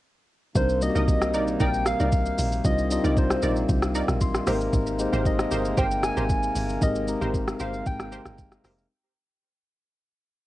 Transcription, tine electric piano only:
0.55 0.76 G3 medium
0.55 0.77 C4 medium
0.55 0.77 D4 medium
0.55 0.77 D#4 medium
0.55 0.78 A#4 medium
0.81 1.65 G3 medium
0.81 1.66 A#3 medium
0.81 1.65 C4 medium
0.81 1.66 D#4 medium
0.81 0.89 F#4 medium
0.90 1.69 G4 medium
2.64 2.85 G3 medium
2.64 2.85 C4 medium
2.64 2.86 D4 medium
2.64 2.86 D#4 medium
2.64 2.86 F4 medium
2.90 3.74 G3 medium
2.90 3.74 C4 medium
2.90 3.74 D4 medium
2.90 3.75 D#4 medium
2.90 3.75 F4 medium
4.21 4.70 C6 medium
4.46 4.89 G#3 medium
4.46 4.54 A#3 medium
4.46 4.89 D#4 medium
4.46 4.90 G4 medium
4.46 4.90 A#4 loud
4.53 4.92 C4 medium
4.99 5.83 G#3 loud
4.99 5.83 C4 medium
4.99 5.83 D#4 medium
4.99 5.83 G4 medium
4.99 5.84 C5 loud
6.81 7.03 G#3 medium
6.81 7.03 C4 medium
6.81 7.03 D#4 medium
6.81 7.03 G4 medium
6.81 7.04 A#4 medium
7.07 7.91 G#3 medium
7.07 7.91 C4 medium
7.07 7.92 D#4 medium
7.07 7.92 G4 medium
7.07 7.92 A#4 medium

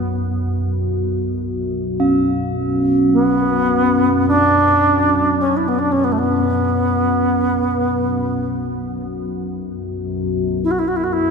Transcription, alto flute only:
0.00 0.26 B3 medium
3.12 4.28 B3 medium
4.28 5.36 D4 loud
5.40 5.58 C#4 medium
5.56 5.69 E4 medium
5.68 5.80 B3 medium
5.79 5.93 D4 medium
5.92 6.05 C#4 medium
6.04 6.13 B3 medium
6.12 6.20 A3 medium
6.18 9.05 B3 medium
10.64 10.72 E4 medium
10.71 10.80 F#4 medium
10.79 10.89 E4 medium
10.88 10.98 F#4 medium
10.96 11.05 E4 medium
11.03 11.14 F#4 medium
11.12 11.31 E4 medium

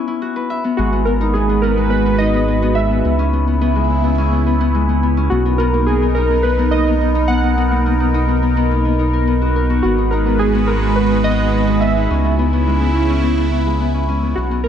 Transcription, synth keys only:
0.77 1.07 F#4 medium
1.05 1.35 A#4 medium
1.33 1.63 G#4 medium
1.62 1.92 A#4 medium
1.90 2.20 B4 loud
2.18 2.77 D#5 loud
2.75 3.28 E5 loud
5.30 5.60 F#4 medium
5.58 5.85 A#4 medium
5.86 6.16 G#4 loud
6.15 6.42 A#4 medium
6.43 6.73 B4 loud
6.71 7.30 D#5 loud
7.28 7.81 F#5 loud
9.83 10.12 F#4 medium
10.11 10.38 A#4 medium
10.39 10.69 G#4 loud
10.67 10.97 A#4 medium
10.96 11.26 B4 loud
11.24 11.83 D#5 loud
11.81 12.34 E5 loud
14.35 14.62 F#4 loud
14.64 14.68 A#4 loud

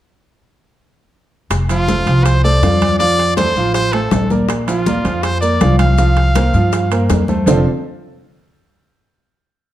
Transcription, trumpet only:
1.70 2.26 F4 medium
2.25 2.44 C5 loud
2.44 2.96 D5 medium
2.99 3.34 D5 loud
3.37 3.72 C5 medium
3.75 3.94 C5 loud
3.93 4.30 A4 medium
4.68 5.25 F4 medium
5.24 5.40 C5 medium
5.41 5.76 D5 medium
5.79 7.06 F5 medium

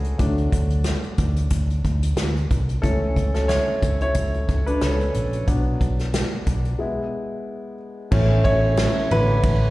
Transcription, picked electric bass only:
0.00 0.14 C#2 medium
0.19 0.46 D2 medium
0.53 0.95 D2 medium
1.18 1.45 D2 medium
1.51 1.78 D2 medium
1.85 2.12 D2 medium
2.16 2.44 D2 medium
2.51 2.78 C2 medium
2.83 3.10 C#2 medium
3.16 3.59 C#2 medium
3.82 4.09 C#2 medium
4.15 4.42 C#2 medium
4.49 4.76 C#2 medium
4.82 5.09 C#2 medium
5.16 5.42 A#1 medium
5.48 5.75 B1 medium
5.81 6.23 B1 medium
6.47 6.74 B1 medium
8.12 8.39 A1 medium
8.45 8.87 A1 loud
9.11 9.38 A1 medium
9.44 9.70 A1 medium

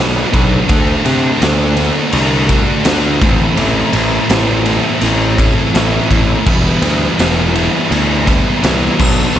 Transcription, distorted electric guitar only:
0.00 0.31 B2 medium
0.00 0.32 F#3 medium
0.00 0.32 B3 medium
0.00 0.33 D4 medium
0.00 0.33 F#4 loud
0.33 0.67 B2 medium
0.33 0.67 F#3 loud
0.33 0.67 B3 medium
0.33 0.67 D4 loud
0.33 0.67 F#4 loud
0.68 1.03 D3 medium
0.68 1.04 A3 loud
0.68 1.04 D4 loud
0.68 1.04 F#4 loud
1.04 1.39 D3 medium
1.04 1.40 A3 medium
1.04 1.39 D4 loud
1.04 1.40 F#4 medium
1.40 1.76 D3 medium
1.40 1.77 A3 loud
1.40 1.77 D4 loud
1.40 1.77 F#4 loud
1.77 2.12 D3 medium
1.77 2.12 A3 loud
1.77 2.13 D4 loud
1.77 2.13 F#4 loud
2.13 2.48 D3 loud
2.13 2.49 A3 loud
2.13 2.50 D4 medium
2.13 2.50 F#4 loud
2.50 2.84 D3 medium
2.50 2.84 A3 loud
2.50 2.85 D4 loud
2.50 2.85 F#4 loud
2.85 3.19 D3 medium
2.85 3.19 A3 medium
2.85 3.20 D4 loud
2.85 3.20 F#4 loud
3.21 3.56 A2 loud
3.21 3.57 E3 loud
3.21 3.57 A3 loud
3.21 3.57 C4 loud
3.21 3.58 E4 loud
3.57 3.92 A2 medium
3.57 3.94 E3 loud
3.57 3.93 A3 loud
3.57 3.94 C4 loud
3.57 3.94 E4 loud
3.94 4.29 A2 medium
3.94 4.30 E3 medium
3.94 4.29 A3 medium
3.94 4.30 C4 loud
3.94 4.31 E4 loud
4.30 4.65 A2 medium
4.30 4.66 E3 medium
4.30 4.66 A3 medium
4.30 4.66 C4 loud
4.30 4.66 E4 loud
4.66 5.01 A2 medium
4.66 5.02 E3 medium
4.66 5.02 A3 loud
4.66 5.02 C4 loud
4.66 5.02 E4 loud
5.02 5.37 A2 medium
5.02 5.37 E3 loud
5.02 5.37 A3 loud
5.02 5.38 C4 loud
5.02 5.38 E4 loud
5.38 5.73 A2 loud
5.38 5.73 E3 medium
5.38 5.74 A3 loud
5.38 5.74 C4 loud
5.38 5.74 E4 loud
5.74 6.10 A2 medium
5.74 6.10 E3 medium
5.74 6.10 A3 loud
5.74 6.11 C4 loud
5.74 6.11 E4 loud
6.11 6.45 A2 medium
6.11 6.45 E3 medium
6.11 6.45 A3 loud
6.11 6.45 C4 loud
6.11 6.45 E4 loud
6.47 6.82 E3 loud
6.47 6.83 G3 loud
6.47 6.83 B3 loud
6.47 6.83 E4 loud
6.83 7.18 E3 medium
6.83 7.18 G3 medium
6.83 7.19 B3 loud
6.83 7.19 E4 medium
7.19 7.54 E3 medium
7.19 7.54 G3 medium
7.19 7.55 B3 loud
7.19 7.55 E4 loud
7.55 7.89 E3 medium
7.55 7.90 G3 medium
7.55 7.90 B3 medium
7.55 7.90 E4 loud
7.90 8.26 E3 medium
7.90 8.26 G3 medium
7.90 8.26 B3 loud
7.90 8.27 E4 loud
8.27 8.61 E3 medium
8.27 8.61 G3 loud
8.27 8.61 B3 loud
8.27 8.62 E4 loud
8.62 8.97 E3 medium
8.62 8.97 G3 loud
8.62 8.97 B3 loud
8.62 8.97 E4 loud
8.99 9.34 B2 medium
8.99 9.35 F#3 loud
8.99 9.35 B3 loud
8.99 9.36 D4 loud
9.35 9.39 B2 loud
9.35 9.39 F#3 loud
9.35 9.39 B3 loud

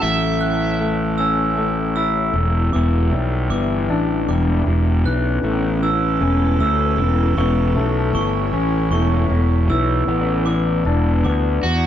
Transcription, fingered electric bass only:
0.03 2.31 A1 medium
2.33 2.71 E1 medium
2.74 3.11 E1 medium
3.11 3.48 B1 medium
3.50 3.87 G1 medium
3.89 4.26 A1 medium
4.28 4.65 E1 medium
4.66 5.03 E1 medium
5.05 5.42 B1 medium
5.43 6.17 A1 medium
6.21 6.58 E1 medium
6.59 6.97 D2 medium
6.97 7.35 E1 medium
7.37 7.74 E1 medium
7.75 8.13 B1 medium
8.13 8.51 G1 medium
8.53 8.90 A1 medium
8.91 9.28 E1 medium
9.30 9.67 E1 medium
9.69 10.06 B1 medium
10.07 10.82 A1 medium
10.85 11.22 E1 medium
11.25 11.62 D2 medium
11.63 11.87 E2 soft

